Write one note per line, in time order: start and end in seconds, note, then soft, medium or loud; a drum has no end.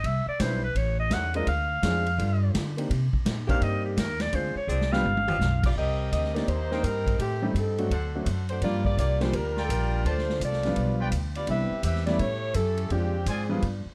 0.04 0.25 C2 medium
0.04 0.28 E5 loud
0.04 kick soft
0.04 ride medium
0.26 0.42 D5 medium
0.26 muted upright bass stroke soft
0.40 0.74 B1 medium
0.40 0.61 G3 medium
0.40 0.61 C4 soft
0.40 0.61 D4 medium
0.40 0.61 E4 soft
0.40 0.62 B4 medium
0.40 0.63 C5 medium
0.40 kick soft
0.40 snare medium
0.40 hi-hat pedal medium
0.40 ride medium
0.64 0.79 B4 medium
0.75 1.10 A1 medium
0.75 0.99 C#5 medium
0.75 kick soft
0.75 ride medium
1.00 1.15 D#5 medium
1.10 1.45 E2 medium
1.10 1.47 C#3 medium
1.10 1.47 G3 medium
1.10 1.47 A3 medium
1.10 1.47 E4 medium
1.10 1.35 F#5 loud
1.10 kick soft
1.10 snare medium
1.10 hi-hat pedal medium
1.10 ride medium
1.34 1.46 G#3 medium
1.34 1.46 C4 medium
1.34 1.46 D4 medium
1.34 1.46 F4 medium
1.34 1.46 A#4 medium
1.34 1.47 D#5 medium
1.34 ride medium
1.47 1.82 D2 medium
1.47 2.51 F5 medium
1.47 kick soft
1.47 ride medium
1.82 2.17 F2 medium
1.82 2.04 G#3 medium
1.82 2.04 C4 soft
1.82 2.04 D4 soft
1.82 2.05 F4 medium
1.82 2.05 G#4 medium
1.82 kick soft
1.82 snare medium
1.82 hi-hat pedal medium
1.82 ride medium
2.06 ride soft
2.18 2.53 G2 medium
2.18 2.72 D3 medium
2.18 2.72 G3 medium
2.18 2.73 B3 medium
2.18 2.73 F4 medium
2.18 kick soft
2.18 ride medium
2.54 2.89 D3 medium
2.54 kick soft
2.54 snare medium
2.54 hi-hat pedal medium
2.54 ride medium
2.77 2.89 A#3 medium
2.77 2.89 C4 medium
2.77 2.89 D4 soft
2.77 2.89 D#4 medium
2.77 2.89 G4 medium
2.77 ride medium
2.90 3.12 C3 medium
2.90 kick soft
2.90 ride medium
3.13 muted upright bass stroke soft
3.13 kick soft
3.25 3.60 A#2 medium
3.25 kick soft
3.25 snare medium
3.25 hi-hat pedal medium
3.25 ride medium
3.47 3.57 D#3 loud
3.47 3.56 A#3 loud
3.47 3.95 A#3 medium
3.47 3.57 C4 medium
3.47 3.95 C4 medium
3.47 3.95 D4 medium
3.47 3.95 D#4 medium
3.47 3.56 G4 loud
3.47 3.95 G4 medium
3.47 3.64 F5 medium
3.47 kick medium
3.47 ride soft
3.61 3.96 G2 medium
3.61 3.84 D#5 medium
3.61 kick soft
3.61 ride medium
3.85 4.00 G4 medium
3.97 4.32 D#2 loud
3.97 4.23 A#4 medium
3.97 kick soft
3.97 snare medium
3.97 hi-hat pedal medium
3.97 ride medium
4.20 4.37 D5 loud
4.20 snare medium
4.20 ride medium
4.33 4.54 D2 loud
4.33 4.54 G#3 medium
4.33 4.54 C4 soft
4.33 4.54 D4 soft
4.33 4.54 F4 medium
4.33 4.54 G#4 medium
4.33 4.56 C5 medium
4.33 kick soft
4.33 ride medium
4.55 4.71 C#5 medium
4.55 muted upright bass stroke soft
4.67 5.03 C2 medium
4.67 4.85 F3 medium
4.67 4.84 C4 medium
4.67 4.85 D4 medium
4.67 4.84 G#4 loud
4.67 4.94 D5 medium
4.67 hi-hat pedal medium
4.81 snare medium
4.92 5.04 G3 medium
4.92 5.03 B3 medium
4.92 5.04 D4 medium
4.92 5.03 F4 medium
4.92 5.04 G4 medium
4.92 5.70 F5 loud
4.92 snare medium
5.04 5.39 G1 medium
5.04 high tom medium
5.17 high tom medium
5.28 5.37 F3 loud
5.28 5.37 B3 medium
5.28 5.37 D4 medium
5.28 5.36 G4 loud
5.28 floor tom loud
5.39 5.74 B1 loud
5.39 snare medium
5.39 hi-hat pedal medium
5.63 5.71 B3 medium
5.63 5.71 F4 medium
5.63 5.71 G4 medium
5.63 5.71 D5 loud
5.63 kick medium
5.63 crash medium
5.76 6.11 C2 medium
5.76 6.10 C4 medium
5.76 6.10 G4 loud
5.76 6.10 A#4 medium
5.76 6.10 D#5 loud
5.76 kick soft
6.12 6.47 D2 medium
6.12 6.34 C4 medium
6.12 6.33 G4 medium
6.12 6.34 A#4 medium
6.12 6.34 D#5 loud
6.12 kick soft
6.12 hi-hat pedal medium
6.12 ride medium
6.24 snare soft
6.35 6.46 A#3 medium
6.35 6.47 A#3 medium
6.35 6.47 C4 medium
6.35 6.47 D4 medium
6.35 6.47 D#4 medium
6.35 6.46 D#4 medium
6.35 6.46 G4 medium
6.35 6.47 G4 medium
6.35 6.48 D5 medium
6.35 snare soft
6.35 ride soft
6.47 6.82 D#2 medium
6.47 6.84 A#3 medium
6.47 6.83 D#4 medium
6.47 6.83 G4 medium
6.47 6.84 C5 loud
6.47 kick soft
6.47 ride medium
6.71 6.82 A#3 medium
6.71 6.82 C4 medium
6.71 6.82 D4 medium
6.71 7.17 D#4 medium
6.71 6.82 D#4 medium
6.71 7.16 A#4 medium
6.71 6.82 A#4 medium
6.71 7.17 C5 medium
6.71 7.16 G5 medium
6.71 snare soft
6.83 7.18 G2 loud
6.83 7.19 G3 medium
6.83 7.19 C4 medium
6.83 7.20 D#4 medium
6.83 7.19 A#4 medium
6.83 kick soft
6.83 hi-hat pedal medium
6.83 ride medium
7.07 kick medium
7.07 ride medium
7.19 7.53 A2 medium
7.19 7.53 D#3 medium
7.19 7.53 A3 medium
7.19 7.53 C4 medium
7.19 7.53 G4 medium
7.19 kick soft
7.19 ride medium
7.42 7.54 G3 medium
7.42 7.53 A3 medium
7.42 7.54 C4 medium
7.42 7.54 D#4 medium
7.42 7.54 G4 medium
7.54 7.89 G2 loud
7.54 7.89 G3 medium
7.54 8.11 C4 medium
7.54 7.90 D#4 medium
7.54 8.11 A4 medium
7.54 kick soft
7.54 hi-hat pedal medium
7.54 ride medium
7.78 7.89 F#3 medium
7.78 7.90 A3 medium
7.78 7.90 C4 medium
7.78 7.89 D4 medium
7.78 7.90 F#4 medium
7.78 ride soft
7.90 8.25 D2 medium
7.90 8.45 D4 medium
7.90 8.45 A4 medium
7.90 8.45 C5 medium
7.90 8.45 F#5 medium
7.90 kick soft
7.90 ride medium
8.15 8.26 F#3 medium
8.15 8.26 A3 medium
8.15 8.26 C4 medium
8.15 8.26 D4 medium
8.15 8.26 F#4 medium
8.26 8.61 F#2 medium
8.26 kick soft
8.26 hi-hat pedal medium
8.26 ride medium
8.49 8.61 A3 medium
8.49 8.61 D4 medium
8.49 8.61 F#4 medium
8.49 8.61 C5 medium
8.49 ride soft
8.61 8.96 G2 medium
8.61 8.83 F3 medium
8.61 8.83 G3 medium
8.61 8.83 A#3 medium
8.61 8.84 A#3 medium
8.61 8.84 D4 soft
8.61 8.84 F4 loud
8.61 8.83 F4 medium
8.61 8.84 G4 medium
8.61 8.84 D5 loud
8.61 kick soft
8.61 ride medium
8.85 8.97 A#3 medium
8.85 8.97 F4 medium
8.85 8.97 G4 medium
8.85 8.97 D5 loud
8.85 kick soft
8.97 9.32 C2 medium
8.97 9.20 A#3 medium
8.97 9.20 F4 medium
8.97 9.20 G4 medium
8.97 9.20 D5 loud
8.97 kick soft
8.97 hi-hat pedal medium
8.97 ride medium
9.20 9.32 F3 medium
9.20 9.32 G3 medium
9.20 9.34 G#3 medium
9.20 9.32 A#3 medium
9.20 9.32 D4 medium
9.20 9.33 D4 medium
9.20 9.33 F4 medium
9.20 9.32 G4 medium
9.20 9.34 C5 loud
9.20 snare soft
9.20 ride soft
9.33 9.68 D2 medium
9.33 9.65 G3 medium
9.33 9.65 D4 medium
9.33 9.65 F4 medium
9.33 9.65 A#4 medium
9.33 kick soft
9.33 ride medium
9.57 10.03 F4 loud
9.57 10.03 A#4 medium
9.57 10.03 D5 medium
9.57 10.03 G5 loud
9.57 snare soft
9.65 9.70 A4 medium
9.69 10.04 A#1 medium
9.69 10.05 G3 medium
9.69 10.05 D4 medium
9.69 10.06 F4 medium
9.69 10.06 A#4 medium
9.69 kick soft
9.69 hi-hat pedal medium
9.69 ride medium
10.05 10.39 D2 loud
10.05 10.42 A3 medium
10.05 10.42 D4 medium
10.05 10.21 F4 medium
10.05 10.42 F4 medium
10.05 10.21 C5 medium
10.05 10.42 C5 loud
10.05 10.21 D5 medium
10.05 10.21 A5 medium
10.05 kick soft
10.05 ride medium
10.18 snare soft
10.29 snare soft
10.40 10.75 C2 medium
10.40 10.97 F4 medium
10.40 10.97 D5 medium
10.40 kick soft
10.40 hi-hat pedal medium
10.40 ride medium
10.44 10.76 C4 medium
10.44 10.76 A4 medium
10.53 snare soft
10.63 11.10 F3 medium
10.63 11.11 G3 medium
10.63 11.11 B3 medium
10.63 11.11 D4 medium
10.63 11.11 F4 medium
10.63 snare soft
10.63 ride soft
10.76 11.11 B1 medium
10.76 kick soft
10.76 ride medium
11.00 11.09 F4 medium
11.00 11.08 B4 medium
11.00 11.09 D5 medium
11.00 11.08 G5 loud
11.12 11.47 D2 medium
11.12 kick soft
11.12 hi-hat pedal medium
11.12 ride medium
11.35 11.48 B3 medium
11.35 11.48 F4 medium
11.35 11.48 G4 medium
11.35 11.48 D5 medium
11.35 ride soft
11.47 11.69 C2 medium
11.47 11.69 G3 medium
11.47 11.69 B3 medium
11.47 11.69 C4 soft
11.47 11.82 C4 medium
11.47 11.69 D4 soft
11.47 11.69 E4 medium
11.47 11.82 G4 medium
11.47 11.83 B4 medium
11.47 11.83 E5 loud
11.47 kick soft
11.47 ride medium
11.70 muted upright bass stroke soft
11.83 12.18 E2 loud
11.83 12.05 C4 medium
11.83 12.05 G4 medium
11.83 12.06 B4 medium
11.83 12.05 E5 medium
11.83 kick soft
11.83 hi-hat pedal medium
11.83 ride medium
11.95 snare soft
12.06 12.18 G3 medium
12.06 12.19 A3 medium
12.06 12.18 B3 medium
12.06 12.19 B3 medium
12.06 12.19 C#4 medium
12.06 12.18 E4 medium
12.06 12.19 E4 medium
12.06 12.18 G4 medium
12.06 12.18 D5 medium
12.06 snare soft
12.06 ride soft
12.19 12.54 A2 medium
12.19 12.55 A3 medium
12.19 12.54 E4 medium
12.19 12.54 G4 medium
12.19 12.55 C#5 loud
12.19 kick soft
12.19 ride medium
12.54 12.89 F#2 medium
12.54 12.91 C#4 medium
12.54 12.91 E4 medium
12.54 12.90 G4 medium
12.54 12.91 A4 loud
12.54 kick soft
12.54 hi-hat pedal medium
12.54 ride medium
12.77 ride medium
12.90 13.25 F2 medium
12.90 13.12 F3 medium
12.90 13.26 F3 medium
12.90 13.12 G#3 medium
12.90 13.26 C4 medium
12.90 13.12 C4 soft
12.90 13.26 D4 medium
12.90 13.12 D4 soft
12.90 13.12 F4 medium
12.90 13.27 G4 medium
12.90 kick soft
12.90 ride medium
13.26 13.61 G#2 medium
13.26 13.86 F3 medium
13.26 13.63 C4 medium
13.26 13.86 D4 medium
13.26 13.43 F4 medium
13.26 13.63 G#4 medium
13.26 13.43 C5 medium
13.26 13.43 D5 medium
13.26 13.43 G#5 loud
13.26 kick soft
13.26 hi-hat pedal medium
13.26 ride medium
13.49 13.61 F3 medium
13.49 13.61 G3 medium
13.49 13.61 B3 medium
13.49 13.61 D4 medium
13.49 13.62 F4 medium
13.62 13.84 G2 medium
13.62 kick soft
13.62 ride medium
13.85 muted upright bass stroke soft